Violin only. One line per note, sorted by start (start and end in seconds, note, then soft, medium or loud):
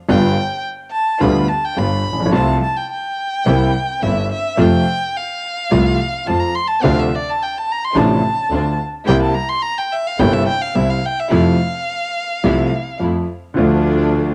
0.09 0.62 G5 loud
0.92 1.22 A5 medium
1.21 1.50 B5 medium
1.49 1.66 A5 medium
1.65 1.80 G5 medium
1.78 2.33 B5 medium
2.34 2.60 A5 loud
2.63 2.78 A5 medium
2.76 2.90 G5 medium
2.91 4.04 G5 medium
4.03 4.31 E5 medium
4.32 4.63 E5 medium
4.62 5.18 G5 medium
5.16 6.28 F5 medium
6.27 6.41 A5 medium
6.40 6.56 A#5 medium
6.55 6.69 C6 medium
6.67 6.84 A5 medium
6.83 7.00 F5 loud
6.99 7.17 E5 medium
7.15 7.31 D5 medium
7.29 7.44 A5 medium
7.43 7.59 G5 medium
7.58 7.73 A5 medium
7.72 7.86 A#5 medium
7.84 7.99 C6 medium
7.97 8.80 A5 medium
9.07 9.20 G5 loud
9.22 9.36 A5 medium
9.34 9.50 A#5 medium
9.49 9.64 C6 loud
9.62 9.80 A#5 loud
9.78 9.94 G5 medium
9.92 10.09 E5 medium
10.07 10.21 F5 medium
10.20 10.35 G5 medium
10.33 10.47 E5 medium
10.48 10.63 G5 medium
10.61 10.77 F5 medium
10.75 10.92 E5 medium
10.90 11.07 F5 medium
11.06 11.21 G5 medium
11.20 11.33 E5 medium
11.34 12.98 F5 medium